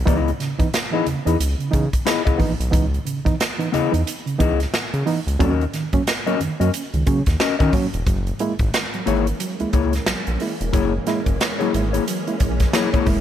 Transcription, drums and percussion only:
0.07 kick, closed hi-hat
0.28 closed hi-hat
0.40 snare, closed hi-hat
0.59 kick, closed hi-hat
0.74 snare, closed hi-hat
1.06 closed hi-hat
1.27 closed hi-hat
1.40 closed hi-hat
1.60 closed hi-hat
1.73 kick, closed hi-hat
1.93 kick, closed hi-hat
2.07 snare, closed hi-hat
2.27 kick, closed hi-hat
2.39 kick, open hi-hat
2.61 closed hi-hat
2.73 kick, closed hi-hat
2.94 closed hi-hat
3.06 closed hi-hat
3.26 kick, closed hi-hat
3.40 snare, closed hi-hat
3.60 closed hi-hat
3.74 closed hi-hat
3.94 closed hi-hat
4.07 closed hi-hat
4.27 closed hi-hat
4.40 kick, closed hi-hat
4.60 snare, closed hi-hat
4.74 snare, closed hi-hat
4.94 closed hi-hat
5.07 open hi-hat
5.28 closed hi-hat
5.40 kick, closed hi-hat
5.61 closed hi-hat
5.74 snare, closed hi-hat
5.93 kick, closed hi-hat
6.07 snare, closed hi-hat
6.27 closed hi-hat
6.41 closed hi-hat
6.61 closed hi-hat
6.74 closed hi-hat
6.94 closed hi-hat
7.07 kick, closed hi-hat
7.26 kick, snare, closed hi-hat
7.40 snare, closed hi-hat
7.60 kick, closed hi-hat
7.73 kick, open hi-hat
7.94 closed hi-hat
8.06 kick, closed hi-hat
8.27 closed hi-hat
8.39 closed hi-hat
8.59 kick, closed hi-hat
8.74 snare, closed hi-hat
8.94 closed hi-hat
9.07 closed hi-hat
9.27 closed hi-hat
9.40 closed hi-hat
9.60 closed hi-hat
9.73 kick, closed hi-hat
9.93 snare, closed hi-hat
10.06 snare, closed hi-hat
10.27 closed hi-hat
10.40 open hi-hat
10.61 closed hi-hat
10.73 kick, closed hi-hat
11.07 snare, closed hi-hat
11.26 kick, closed hi-hat
11.41 snare, closed hi-hat
11.60 closed hi-hat
11.74 closed hi-hat
11.94 closed hi-hat
12.08 closed hi-hat
12.27 closed hi-hat
12.40 kick, closed hi-hat
12.60 kick, snare, closed hi-hat
12.73 snare, closed hi-hat
12.94 kick, closed hi-hat
13.06 kick, open hi-hat

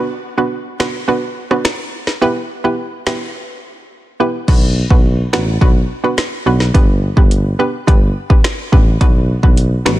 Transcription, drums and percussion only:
0.80 finger snap, snare
1.51 cross-stick
1.65 finger snap, snare
2.07 snare
3.07 finger snap, snare
4.48 kick, crash
4.90 kick
5.33 finger snap, snare
5.61 kick
6.18 finger snap, snare
6.60 snare
6.75 kick, closed hi-hat
7.17 kick
7.31 closed hi-hat
7.88 kick, closed hi-hat
8.30 kick
8.44 finger snap, snare, closed hi-hat
8.73 kick
9.01 kick, closed hi-hat
9.43 kick
9.57 closed hi-hat
9.86 finger snap, snare, high bongo, low bongo

